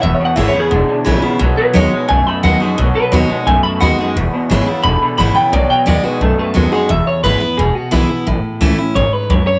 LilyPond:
<<
  \new Staff \with { instrumentName = "Clean electric guitar" } { \time 4/4 \key e \major \tempo 4 = 175 \tuplet 3/2 { e''8 cis''8 fis''8 e''8 cis''8 gis'8~ } gis'4. r8 | r8 b'8 cis''4 gis''8 b''8 fis''8 r8 | r8 b'8 cis''4 gis''8 b''8 fis''8 r8 | r2 b''8 r8 b''8 g''8 |
d''8 g''8 d''8 b'8 a'8 b'8 a'8 gis'8 | e''8 cis''8 b'4 gis'8 fis'8 e'4 | r2 cis''8 b'8 cis''8 cis''8 | }
  \new Staff \with { instrumentName = "Steel-string acoustic guitar" } { \time 4/4 \key e \major << { r4 <e gis b e'>8 <b e'>8 r4 <e gis b e'>8 <b e'>8 | r4 <fis b dis' fis'>8 <dis' fis'>8 r4 <fis b dis' fis'>8 <dis' fis'>8 | r4 <fis b dis' fis'>8 <dis' fis'>8 r4 <fis b dis' fis'>8 <dis' fis'>8 | r4 <e gis b e'>8 <b e'>8 r4 <e gis b e'>8 <b e'>8 |
r4 <fis b dis' fis'>8 <dis' fis'>8 r4 <fis b dis' fis'>8 <dis' fis'>8 | r4 <e gis b e'>8 <b e'>8 r4 <e gis b e'>8 <b e'>8 | r4 <e a cis' e'>8 <cis' e'>8 r2 | } \\ { e,2 b,2 | b,2 fis,2 | b,2 fis,2 | e,2 b,2 |
b,2 fis,2 | e,2 b,2 | a,2 gis,4 fis,4 | } >> }
  \new Staff \with { instrumentName = "Clean electric guitar" } { \clef bass \time 4/4 \key e \major <e, b,>8 <e, b,>8 <e, cis>8 <e, cis>8 <e, d>8 <e, d>8 <e, cis>8 <e, cis>8 | <b, fis>8 <b, fis>8 <b, gis>8 <b, gis>8 <b, a>8 <b, a>8 <b, gis>8 <b, gis>8 | <b, fis>8 <b, fis>8 <b, gis>8 <b, gis>8 <b, a>8 <b, a>8 <b, gis>8 <b, gis>8 | <e, b,>8 <e, b,>8 <e, cis>8 <e, cis>8 <e, d>8 <e, d>8 <e, cis>8 <e, cis>8 |
<b, fis>8 <b, fis>8 <b, gis>8 <b, gis>8 <b, a>8 <b, a>8 <b, gis>8 <b, gis>8 | r1 | r1 | }
  \new Staff \with { instrumentName = "Upright bass" } { \clef bass \time 4/4 \key e \major e,,8 r8 gis,,8 r8 e,,8 r8 ais,,8 r8 | b,,8 r8 dis,8 r8 b,,8 r8 dis,8 r8 | b,,8 r8 dis,8 r8 b,,8 r8 dis,8 r8 | e,,8 r8 gis,,8 r8 e,,8 r8 gis,,8 r8 |
b,,8 r8 dis,8 r8 b,,8 r8 dis,8 r8 | e,,8 r8 gis,,8 r8 e,,8 r8 b,,8 r8 | a,,8 r8 cis,8 r8 a,,8 r8 cis,8 r8 | }
>>